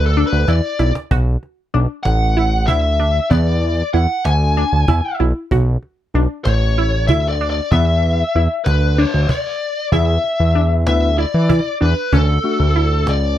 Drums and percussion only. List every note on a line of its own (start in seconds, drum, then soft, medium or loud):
0.17 cajon slap soft
0.48 cajon slap medium
0.79 cajon slap medium
0.95 cajon slap medium
1.11 cajon bass loud
1.43 cajon slap soft
1.74 cajon slap soft
2.05 cajon slap medium
2.37 cajon slap soft
2.68 cajon bass medium
3.00 cajon slap soft
3.31 cajon bass medium
3.62 cajon slap soft
3.94 cajon slap soft
4.25 cajon slap medium
4.88 cajon bass loud
5.20 cajon slap soft
5.51 cajon bass medium
5.83 cajon slap soft
6.14 cajon slap soft
6.45 cajon slap medium
6.78 cajon slap soft
7.09 cajon bass medium
7.09 cajon slap soft
7.40 cajon slap soft
7.72 cajon bass medium
8.03 cajon slap soft
8.35 cajon slap soft
8.66 cajon slap medium
8.98 cajon slap soft
9.29 cajon bass medium
9.29 cajon slap medium
9.92 cajon bass medium
10.24 cajon slap soft
10.55 cajon slap soft
10.87 cajon slap loud
11.18 cajon slap soft
11.50 cajon bass loud
11.81 cajon slap soft
12.13 cajon bass medium
12.44 cajon slap soft
12.75 cajon slap soft
13.07 cajon slap medium